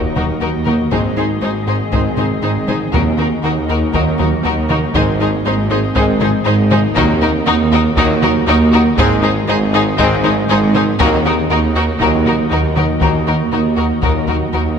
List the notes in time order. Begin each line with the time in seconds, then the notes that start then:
Already playing: D#2 D#3 A#3 F#4 D#5, sub drop
0.16 D#2 F#3 D#4 F#4 A#4, taiko mid
0.41 D#2 D#4 F#4 A#4
0.66 D#3 A#3 D#4 F#4 A#4, taiko mid
0.91 G#1 G#2 D#3 G#3 C4 D#4 G#4 C5, taiko
1.17 G#3 D#4 G#4 C5
1.41 G#1 G#2 G#3 D#4 G#4 C5
1.67 G#2 D#4 G#4 C5
1.92 G#1 G#2 D#3 G#3 C4 D#4 G#4 C5, taiko
2.18 G#2 C4 D#4 G#4 C5, taiko mid
2.42 G#1 G#2 D#4 G#4 C5
2.68 G#3 D#4 G#4 C5, taiko mid
2.93 D#2 A#2 D#3 F#3 A#3 D#4 F#4 A#4, taiko
3.18 D#3 A#3 D#4 F#4 A#4
3.43 D#2 D#3 D#4 F#4 A#4
3.69 D#2 D#4 F#4 A#4
3.93 D#2 A#2 D#3 F#3 A#3 D#4 F#4 A#4, taiko
4.19 D#2 F#3 D#4 F#4 A#4, taiko mid
4.44 D#2 D#4 F#4 A#4
4.69 D#3 A#3 D#4 F#4 A#4, taiko mid
4.94 G#1 G#2 D#3 G#3 C4 D#4 G#4 C5 D#5, taiko
5.20 G#3 D#4 G#4 C5
5.45 G#1 G#2 G#3 D#4 G#4 C5
5.70 G#2 D#4 G#4 C5
5.95 G#1 G#2 D#3 G#3 C4 D#4 G#4 C5, taiko
6.21 G#2 C4 D#4 G#4 C5, taiko mid
6.45 G#1 G#2 D#4 G#4 C5
6.71 G#3 D#4 G#4 C5, taiko mid
6.95 D#2 A#2 D#3 F#3 A#3 D#4 F#4 A#4, taiko
7.22 D#3 A#3 D#4 F#4 A#4
7.46 D#2 D#3 D#4 F#4 A#4
7.72 D#2 D#4 F#4 A#4
7.96 D#2 A#2 D#3 F#3 A#3 D#4 F#4 A#4, taiko
8.22 D#2 F#3 D#4 F#4 A#4, taiko mid
8.47 D#2 D#4 F#4 A#4
8.73 D#3 A#3 D#4 F#4 A#4, taiko mid
8.98 G#1 G#2 D#3 G#3 C4 D#4 G#4 C5, taiko
9.23 G#3 D#4 G#4 C5
9.48 G#1 G#2 G#3 D#4 G#4 C5
9.73 G#2 D#4 G#4 C5
9.98 G#1 G#2 D#3 G#3 C4 D#4 G#4 C5, taiko
10.24 G#2 C4 D#4 G#4 C5, taiko mid
10.49 G#1 G#2 D#4 G#4 C5
10.74 G#3 D#4 G#4 C5, taiko mid
10.99 D#2 A#2 D#3 F#3 A#3 D#4 F#4 A#4 D#5, taiko
11.25 D#3 A#3 D#4 F#4 A#4
11.50 D#2 D#3 D#4 F#4 A#4
11.75 D#2 D#4 F#4 A#4
12.01 D#2 A#2 D#3 F#3 A#3 D#4 F#4 A#4, taiko
12.26 D#2 F#3 D#4 F#4 A#4, taiko mid
12.51 D#2 D#4 F#4 A#4
12.76 D#3 A#3 D#4 F#4 A#4, taiko mid
13.01 D#2 A#2 D#3 F#3 A#3 D#4 F#4 A#4, taiko
13.27 D#3 A#3 D#4 F#4 A#4
13.52 D#2 D#3 D#4 F#4 A#4
13.77 D#2 D#4 F#4 A#4
14.02 D#2 A#2 D#3 F#3 A#3 D#4 F#4 A#4, taiko
14.28 D#2 F#3 D#4 F#4 A#4, taiko mid
14.53 D#2 D#4 F#4 A#4